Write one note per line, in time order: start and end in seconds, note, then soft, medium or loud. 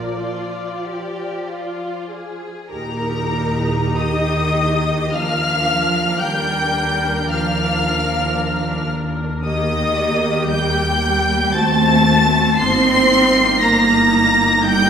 0.00 2.51 F3 soft
0.00 2.47 F4 soft
0.00 0.19 A#4 soft
0.00 2.08 D5 medium
0.19 0.80 F4 soft
0.84 1.48 G4 soft
1.48 2.11 F4 soft
2.10 2.72 G#4 soft
2.71 6.17 D#2 soft
2.71 3.95 A#2 medium
2.71 5.09 D#4 medium
2.71 5.09 G4 medium
2.71 3.95 A#4 medium
2.71 3.95 A#5 medium
3.98 5.13 D#3 medium
3.98 5.11 D#5 medium
3.98 5.13 D#6 medium
5.12 6.21 F3 medium
5.12 9.41 D4 medium
5.12 9.41 A#4 medium
5.12 6.21 F5 medium
5.12 6.20 F6 medium
6.21 11.50 D#2 medium
6.21 7.31 G3 medium
6.21 7.28 G5 medium
6.21 7.31 G6 medium
7.30 8.88 F3 medium
7.30 8.88 F5 medium
7.30 8.89 F6 medium
9.45 10.46 D#3 medium
9.45 11.50 A#3 medium
9.45 11.50 G4 medium
9.45 10.46 D#5 medium
9.45 10.45 D#6 medium
10.49 11.54 G3 medium
10.49 11.55 G5 medium
10.49 11.54 G6 medium
11.54 12.56 D#2 medium
11.54 12.58 A3 medium
11.54 12.54 C4 medium
11.54 12.54 F#4 medium
11.54 12.56 A5 medium
11.54 12.58 A6 loud
12.57 14.90 G1 medium
12.57 14.90 A#3 medium
12.57 13.61 C4 loud
12.57 14.90 D#4 medium
12.57 13.61 C6 loud
12.57 13.59 C7 loud
13.61 14.62 A#3 medium
13.61 14.65 A#5 medium
13.61 14.64 A#6 loud
14.63 14.90 G3 medium
14.63 14.90 G5 medium
14.63 14.90 G6 loud